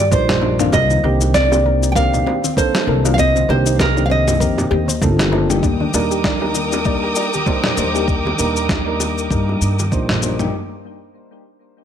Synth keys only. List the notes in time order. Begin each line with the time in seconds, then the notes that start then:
0.11 G3 A#3 D4 D#4 C5
0.41 G3 A#3 D4 D#4 C5
0.59 D#3 A#3 C4 D4 F4
1.03 D3 D#3 A#3 C4 G4
1.51 D#3 A#3 C4 D4 G4
1.95 D#3 A#3 C4 D4 G4
2.56 D#3 A#3 C4 D4 A4
2.87 D#3 A#3 C4 D4 A4
3.05 D#3 A#3 C4 D4 F4
3.48 D#3 A#3 C4 D4 G4
3.96 D#3 A#3 C4 D4 G4
4.41 D3 D#3 A#3 C4 G4
5.02 D#3 A#3 C4 D4 A4
5.32 D#3 A#3 C4 D4 A4
5.49 G3 A#3 D4 D#4 G4
5.94 G3 A#3 D4 D#4 A#4
6.41 G3 A#3 D4 D#4 A#4
6.85 G3 A#3 D4 D#4 A#4
7.46 G3 A#3 D4 D#4 C5
7.77 G3 A#3 D4 D#4 C5
7.94 G3 A#3 D4 D#4 G4
8.38 G3 A#3 D4 D#4 A#4
8.86 G3 A#3 D4 D#4 A#4
9.31 G3 A#3 D4 D#4 A#4
9.91 G3 A#3 D4 D#4 C5
10.21 G3 A#3 D4 D#4 C5
10.39 G3 A#3 D4 D#4 G4